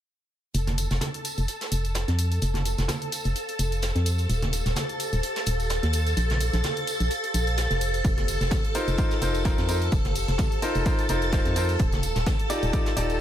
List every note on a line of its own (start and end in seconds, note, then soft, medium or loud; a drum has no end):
0.54 0.87 F1 medium
0.54 13.21 G4 medium
0.54 13.21 A4 medium
0.54 13.21 A5 medium
0.54 closed hi-hat medium
0.54 tambourine soft
0.67 13.21 C5 medium
0.67 snare soft
0.67 closed hi-hat soft
0.67 high conga medium
0.78 closed hi-hat medium
0.78 tambourine medium
0.91 1.00 F1 loud
0.91 snare soft
0.91 closed hi-hat soft
0.91 tambourine soft
1.01 snare medium
1.01 closed hi-hat medium
1.01 tambourine soft
1.01 high conga medium
1.12 13.21 F5 medium
1.12 closed hi-hat soft
1.25 closed hi-hat medium
1.25 tambourine medium
1.38 1.47 F1 medium
1.38 closed hi-hat soft
1.38 tambourine soft
1.48 closed hi-hat medium
1.48 tambourine soft
1.61 snare soft
1.61 closed hi-hat soft
1.61 tambourine soft
1.72 2.05 F1 medium
1.72 closed hi-hat medium
1.72 tambourine medium
1.85 closed hi-hat soft
1.85 tambourine soft
1.95 snare loud
1.95 closed hi-hat medium
1.95 tambourine soft
2.08 2.39 F2 medium
2.08 snare soft
2.08 closed hi-hat soft
2.18 closed hi-hat medium
2.18 tambourine medium
2.31 closed hi-hat soft
2.31 tambourine soft
2.42 2.75 F1 medium
2.42 closed hi-hat medium
2.42 tambourine medium
2.54 snare soft
2.54 closed hi-hat soft
2.54 high conga medium
2.65 closed hi-hat medium
2.65 tambourine medium
2.78 2.87 F1 loud
2.78 snare soft
2.78 closed hi-hat soft
2.78 tambourine soft
2.88 snare loud
2.88 closed hi-hat medium
2.88 tambourine soft
2.88 high conga medium
3.02 closed hi-hat soft
3.12 closed hi-hat medium
3.12 tambourine medium
3.24 3.34 F1 medium
3.24 closed hi-hat soft
3.24 tambourine soft
3.35 closed hi-hat medium
3.35 tambourine soft
3.48 closed hi-hat soft
3.48 tambourine soft
3.59 3.92 F1 medium
3.59 closed hi-hat medium
3.59 tambourine medium
3.72 closed hi-hat soft
3.72 tambourine soft
3.82 snare loud
3.82 closed hi-hat medium
3.82 tambourine soft
3.95 4.27 F2 medium
3.95 snare soft
3.95 closed hi-hat soft
4.06 closed hi-hat medium
4.06 tambourine medium
4.18 closed hi-hat soft
4.18 tambourine soft
4.29 4.62 D#1 medium
4.29 closed hi-hat medium
4.29 tambourine soft
4.42 snare soft
4.42 closed hi-hat soft
4.42 high conga medium
4.53 closed hi-hat medium
4.53 tambourine medium
4.66 4.75 D#1 loud
4.66 snare soft
4.66 closed hi-hat soft
4.66 tambourine soft
4.76 snare loud
4.76 closed hi-hat medium
4.76 tambourine soft
4.76 high conga medium
4.89 closed hi-hat soft
4.99 closed hi-hat medium
4.99 tambourine medium
5.13 5.21 D#1 medium
5.13 8.05 A5 medium
5.13 closed hi-hat soft
5.13 tambourine soft
5.23 closed hi-hat medium
5.23 tambourine soft
5.36 snare medium
5.36 closed hi-hat soft
5.36 tambourine soft
5.46 5.80 D#1 medium
5.46 closed hi-hat medium
5.46 tambourine medium
5.60 closed hi-hat soft
5.60 tambourine soft
5.69 snare medium
5.69 closed hi-hat medium
5.69 tambourine soft
5.83 6.14 D#2 medium
5.83 snare medium
5.83 closed hi-hat soft
5.93 closed hi-hat medium
5.93 tambourine medium
6.07 closed hi-hat soft
6.07 tambourine soft
6.17 6.50 A#1 loud
6.17 closed hi-hat medium
6.17 tambourine soft
6.30 snare soft
6.30 closed hi-hat soft
6.30 high conga medium
6.41 closed hi-hat medium
6.41 tambourine medium
6.53 6.62 A#1 loud
6.53 snare soft
6.53 closed hi-hat soft
6.53 tambourine soft
6.63 snare medium
6.63 closed hi-hat medium
6.63 tambourine soft
6.63 high conga medium
6.77 closed hi-hat soft
6.87 closed hi-hat medium
6.87 tambourine medium
7.00 7.09 A#1 medium
7.00 closed hi-hat soft
7.00 tambourine soft
7.10 closed hi-hat medium
7.10 tambourine medium
7.24 closed hi-hat soft
7.24 tambourine soft
7.34 7.67 A#1 medium
7.34 closed hi-hat medium
7.34 tambourine medium
7.47 closed hi-hat soft
7.47 tambourine soft
7.57 snare loud
7.57 closed hi-hat medium
7.57 tambourine soft
7.71 8.02 F1 medium
7.71 snare soft
7.71 closed hi-hat soft
7.81 closed hi-hat medium
7.81 tambourine medium
7.94 closed hi-hat soft
7.94 tambourine soft
8.04 8.37 F1 loud
8.04 kick loud
8.04 closed hi-hat medium
8.04 tambourine soft
8.17 snare soft
8.17 closed hi-hat soft
8.17 high conga medium
8.28 closed hi-hat medium
8.28 tambourine medium
8.41 8.50 F1 loud
8.41 snare soft
8.41 closed hi-hat soft
8.41 tambourine soft
8.51 kick loud
8.51 snare loud
8.51 closed hi-hat medium
8.51 tambourine soft
8.51 high conga medium
8.64 closed hi-hat soft
8.75 8.95 D#4 medium
8.75 8.95 F4 medium
8.75 8.95 A#4 medium
8.75 8.95 C5 medium
8.75 closed hi-hat medium
8.75 tambourine medium
8.88 8.96 F1 medium
8.88 closed hi-hat soft
8.88 tambourine soft
8.97 9.15 D#4 medium
8.97 9.15 F4 medium
8.97 9.15 A#4 medium
8.97 9.15 C5 medium
8.97 kick loud
8.97 closed hi-hat medium
8.97 tambourine soft
9.11 snare soft
9.11 closed hi-hat soft
9.11 tambourine soft
9.21 9.54 F1 medium
9.21 9.43 D#4 medium
9.21 9.43 F4 medium
9.21 9.43 A#4 medium
9.21 9.43 C5 medium
9.21 closed hi-hat medium
9.21 tambourine medium
9.34 closed hi-hat soft
9.34 tambourine soft
9.45 9.65 D#4 medium
9.45 9.65 F4 medium
9.45 9.65 A#4 medium
9.45 9.65 C5 medium
9.45 kick loud
9.45 snare loud
9.45 closed hi-hat medium
9.45 tambourine soft
9.58 9.89 F2 medium
9.58 snare medium
9.58 closed hi-hat soft
9.69 9.85 D#4 medium
9.69 9.85 F4 medium
9.69 9.85 A#4 medium
9.69 9.85 C5 medium
9.69 closed hi-hat medium
9.69 tambourine medium
9.82 closed hi-hat soft
9.82 tambourine soft
9.92 10.25 F1 medium
9.92 kick loud
9.92 closed hi-hat medium
9.92 tambourine soft
10.05 snare soft
10.05 closed hi-hat soft
10.05 high conga medium
10.15 closed hi-hat medium
10.15 tambourine medium
10.28 10.37 F1 loud
10.28 snare soft
10.28 closed hi-hat soft
10.28 tambourine soft
10.38 kick loud
10.38 snare loud
10.38 closed hi-hat medium
10.38 tambourine soft
10.38 high conga medium
10.52 closed hi-hat soft
10.62 10.83 D#4 medium
10.62 10.83 F4 medium
10.62 10.83 A#4 medium
10.62 10.83 C5 loud
10.62 closed hi-hat medium
10.62 tambourine medium
10.75 10.84 F1 medium
10.75 closed hi-hat soft
10.75 tambourine soft
10.86 11.02 D#4 medium
10.86 11.02 F4 medium
10.86 11.02 A#4 medium
10.86 11.02 C5 medium
10.86 kick loud
10.86 closed hi-hat medium
10.86 tambourine soft
10.98 closed hi-hat soft
10.98 tambourine soft
11.09 11.42 F1 medium
11.09 11.30 D#4 medium
11.09 11.30 F4 medium
11.09 11.30 A#4 medium
11.09 11.30 C5 medium
11.09 closed hi-hat medium
11.09 tambourine medium
11.22 closed hi-hat soft
11.22 tambourine soft
11.32 11.53 D#4 medium
11.32 11.53 F4 medium
11.32 11.53 A#4 medium
11.32 11.53 C5 medium
11.32 kick loud
11.32 snare loud
11.32 closed hi-hat medium
11.32 tambourine soft
11.46 11.77 F2 medium
11.46 snare soft
11.46 closed hi-hat soft
11.56 11.73 D#4 medium
11.56 11.73 F4 medium
11.56 11.73 A#4 medium
11.56 11.73 C5 medium
11.56 closed hi-hat medium
11.56 tambourine medium
11.69 closed hi-hat soft
11.69 tambourine soft
11.79 12.12 D#1 loud
11.79 kick loud
11.79 closed hi-hat medium
11.79 tambourine soft
11.93 snare soft
11.93 closed hi-hat soft
11.93 high conga medium
12.03 closed hi-hat medium
12.03 tambourine medium
12.15 12.25 D#1 loud
12.15 13.21 A5 medium
12.15 snare soft
12.15 closed hi-hat soft
12.15 tambourine soft
12.26 kick loud
12.26 snare loud
12.26 closed hi-hat medium
12.26 tambourine soft
12.26 high conga medium
12.39 closed hi-hat soft
12.50 12.70 D#4 medium
12.50 12.70 F4 medium
12.50 12.70 G4 medium
12.50 12.70 D5 medium
12.50 closed hi-hat medium
12.50 tambourine medium
12.63 12.71 D#1 medium
12.63 closed hi-hat soft
12.63 tambourine soft
12.73 12.90 D#4 medium
12.73 12.90 F4 medium
12.73 12.90 G4 medium
12.73 12.90 D5 medium
12.73 kick loud
12.73 closed hi-hat medium
12.73 tambourine soft
12.86 snare medium
12.86 closed hi-hat soft
12.86 tambourine soft
12.96 13.21 D#1 medium
12.96 13.18 D#4 medium
12.96 13.18 F4 medium
12.96 13.18 G4 medium
12.96 13.18 D5 medium
12.96 closed hi-hat medium
12.96 tambourine medium
13.10 closed hi-hat soft
13.10 tambourine soft